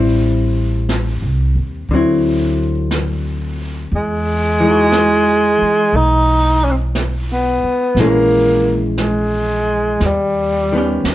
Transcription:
Already playing: upright bass A1, hollow-body jazz guitar G3 C4 E4
0.89 brush sweep, snare, hi-hat pedal
1.22 upright bass C2
1.55 upright bass D#2
1.89 upright bass D2, hollow-body jazz guitar D3, brush sweep
1.93 hollow-body jazz guitar F#3 C4 E4
2.91 brush sweep, snare, hi-hat pedal
3.91 upright bass E2, brush sweep
3.96 tenor saxophone G#3
4.60 hollow-body jazz guitar E3 G#3
4.67 hollow-body jazz guitar D#4
4.71 hollow-body jazz guitar F#4
4.92 brush sweep, snare, hi-hat pedal
5.62 muted upright bass stroke
5.93 upright bass B1, tenor saxophone D#4, brush sweep
6.64 tenor saxophone C#4
6.71 tenor saxophone C4
6.95 brush sweep, snare, hi-hat pedal
7.33 tenor saxophone B3
7.63 muted upright bass stroke
7.95 upright bass A#1, brush sweep, snare
8.00 hollow-body jazz guitar E3 G#3 C#4, tenor saxophone A#3
8.98 tenor saxophone G#3, brush sweep, snare, hi-hat pedal
10.00 upright bass D#2, brush sweep, snare
10.06 tenor saxophone G3
10.73 hollow-body jazz guitar D#3 B3 C#4
10.78 hollow-body jazz guitar G4
11.04 upright bass D#2, brush sweep, snare, hi-hat pedal

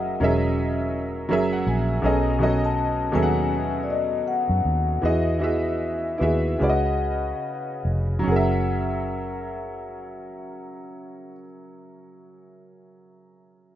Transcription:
Already playing: fingered electric bass F#1, upright piano F#3 C#4 G#4 A#4 D#5 E5, vibraphone F#5
0.20 fingered electric bass E1, upright piano F#3 C#4 G#4 A#4 D#5
0.24 upright piano E5
1.29 fingered electric bass F#1, upright piano F#3 C#4 G#4 A#4
1.33 upright piano E5
1.53 upright piano F#5
1.67 fingered electric bass A#1, upright piano G#5
2.02 fingered electric bass B1, upright piano B2 F#3 C#4 G#4 A4 D#5, vibraphone G#5
2.39 upright piano B2 F#3 C#4 F#4 A4
2.43 upright piano D#5
2.65 vibraphone A5
3.12 fingered electric bass D#2, upright piano B2 F#3 C#4 G#4 A4, vibraphone G#5
3.16 upright piano E5
3.23 upright piano F#5
3.83 vibraphone D5
3.90 vibraphone D#5
4.28 vibraphone F#5
4.49 fingered electric bass F#2
4.65 fingered electric bass D#2
5.02 fingered electric bass E2, upright piano E3 B3 F#4 G#4 D#5, vibraphone E5
5.39 upright piano E3 B3 F#4 G#4
5.44 upright piano E5
6.18 fingered electric bass D#2, upright piano B3 E4 F#4 G#4, vibraphone E5
6.23 upright piano E5
6.59 fingered electric bass C#2, upright piano C#3 C#4 F#4 B4, vibraphone F#5
6.63 upright piano D5
6.70 upright piano D#5
7.85 fingered electric bass F1
8.19 upright piano F#3
8.23 upright piano C#4 G#4
8.27 fingered electric bass F#1, vibraphone F#5
8.32 upright piano A#4
8.36 upright piano E5

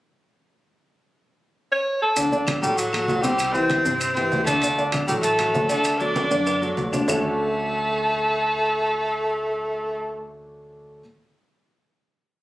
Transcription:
1.72 alto saxophone C#5
2.02 alto saxophone A4
2.16 upright bass D2, grand piano D3 D4 D5, high conga, high timbale, maracas
2.32 grand piano D3 D4 D5, high conga, maracas
2.47 high conga, high timbale, low timbale, claves, maracas
2.61 upright bass A1, grand piano F#3 F#4 A4, tenor saxophone G3, alto saxophone G4, maracas
2.77 tenor saxophone F#3, alto saxophone F#4, high conga, high timbale, maracas
2.93 grand piano F#3 F#4 A4, high conga, high timbale, claves, maracas
3.08 upright bass C2, high conga, low timbale, maracas
3.22 grand piano C3 C4 C5, tenor saxophone G3, alto saxophone G4, high conga, high timbale, maracas
3.38 high conga, high timbale, claves, maracas
3.53 grand piano E3 E4 G4, tenor saxophone C4, alto saxophone C5, high conga, maracas
3.70 high conga, high timbale, low timbale, maracas
3.85 upright bass G2, grand piano C3 C4 C5, high conga, maracas
4.01 high conga, high timbale, claves, maracas
4.13 grand piano E3 E4, tenor saxophone C4, alto saxophone C5, high conga, maracas
4.17 grand piano G4, high timbale
4.31 upright bass D2, high conga, low timbale, maracas
4.44 grand piano D3 D4 D5, tenor saxophone A3, alto saxophone A4, high conga, high timbale, claves, maracas
4.62 grand piano D3 D4 D5, high timbale, maracas
4.78 grand piano D3 D4 D5, high conga, maracas
4.92 high conga, high timbale, low timbale, claves, maracas
5.07 upright bass A1, grand piano F#3 F#4 A4, tenor saxophone G3, alto saxophone G4, maracas
5.20 tenor saxophone A3, alto saxophone A4, high timbale, maracas
5.25 high conga
5.39 grand piano F#3 F#4 A4, high conga, high timbale, claves, maracas
5.55 upright bass D2, high conga, low timbale, maracas
5.68 grand piano D3 D4 D5, tenor saxophone A3, alto saxophone A4, high timbale, maracas
5.84 high conga, high timbale, claves, maracas
5.98 grand piano F#3 F#4 A4, tenor saxophone D4, alto saxophone D5, high conga, maracas
6.16 high conga, high timbale, maracas
6.31 upright bass F#2, grand piano D3 D4 D5, high conga, high timbale, maracas
6.47 high conga, high timbale, claves, maracas
6.61 grand piano F#3 F#4 A4, high conga, maracas
6.77 upright bass D2, high conga, low timbale, maracas
6.92 grand piano D3 D4 D5, high conga, low timbale, claves, maracas
7.07 upright bass D2, grand piano D3 A3 C#4 D4 F#4 A4, tenor saxophone A3, alto saxophone A4, low conga, low timbale, claves, maracas

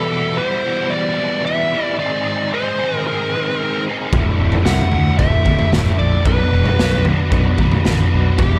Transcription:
Already playing: overdriven electric guitar E2 B2 E3 G3 B3, lead electric guitar A4
0.10 overdriven electric guitar E3 G3 B3 E4
0.37 overdriven electric guitar E3 G3 B3 E4, lead electric guitar C5
0.64 overdriven electric guitar E2 B2 E3 G3 B3 E4
0.90 overdriven electric guitar E3 G3 B3, lead electric guitar D5
0.95 overdriven electric guitar E4
1.18 overdriven electric guitar E2 B2 E3 G3 B3 E4
1.44 overdriven electric guitar E3 G3 B3 E4, lead electric guitar E5
1.72 overdriven electric guitar E3 G3 B3 E4
1.97 overdriven electric guitar G#2 D#3 G#3 C4 D#4 G#4, lead electric guitar D5
2.24 overdriven electric guitar G#3 C4 D#4 G#4
2.52 overdriven electric guitar G#3 C4 D#4 G#4, lead electric guitar C5
2.79 overdriven electric guitar G#2 D#3 G#3 C4 D#4 G#4
3.07 overdriven electric guitar G#3 C4 D#4, lead electric guitar A#4
3.11 overdriven electric guitar G#4
3.35 overdriven electric guitar G#2 D#3 G#3 C4 D#4 G#4
3.61 overdriven electric guitar G#3 C4 D#4 G#4
3.87 overdriven electric guitar G#3 C4 D#4 G#4
4.13 fingered electric bass D1, overdriven electric guitar D2 A2 D3 A3 E4, kick, floor tom
4.39 fingered electric bass D1, overdriven electric guitar D3 A3 E4
4.52 floor tom
4.65 fingered electric bass C2, overdriven electric guitar A2 D3 A3 E4, lead electric guitar F#5, snare
4.78 floor tom
4.91 fingered electric bass D2, overdriven electric guitar D2 A2 D3 A3 E4, mid tom
5.18 fingered electric bass D1, overdriven electric guitar A2 D3 A3, lead electric guitar E5, kick, floor tom
5.22 overdriven electric guitar E4
5.45 fingered electric bass D1, overdriven electric guitar D2 A2 D3 A3 E4, kick, mid tom
5.59 floor tom, mid tom
5.71 fingered electric bass D1, overdriven electric guitar A2 D3 A3 E4, snare, mid tom
5.86 floor tom
5.98 fingered electric bass A#1, overdriven electric guitar D3 A3 E4, lead electric guitar D5
6.24 fingered electric bass B1, overdriven electric guitar B2 F#3 B3 D4 F#4 B4, lead electric guitar B4, kick, floor tom
6.51 fingered electric bass E1, overdriven electric guitar B3 D4 F#4 B4
6.66 floor tom
6.79 fingered electric bass B1, overdriven electric guitar B3 D4 F#4 B4, snare
6.92 floor tom
7.05 overdriven electric guitar B2 F#3 B3 D4 F#4 B4, mid tom
7.30 fingered electric bass B1, overdriven electric guitar B3 D4 F#4 B4, kick, floor tom
7.58 fingered electric bass B1, overdriven electric guitar B2 F#3 B3 D4 F#4 B4, kick, mid tom
7.72 floor tom, mid tom
7.84 fingered electric bass A1, overdriven electric guitar B3 D4 F#4 B4, snare, mid tom
7.99 floor tom
8.10 fingered electric bass B1, overdriven electric guitar B3 D4 F#4 B4
8.37 fingered electric bass E1, overdriven electric guitar E2 B2 E3 G3 B3, lead electric guitar G4, kick, floor tom
8.41 overdriven electric guitar E4

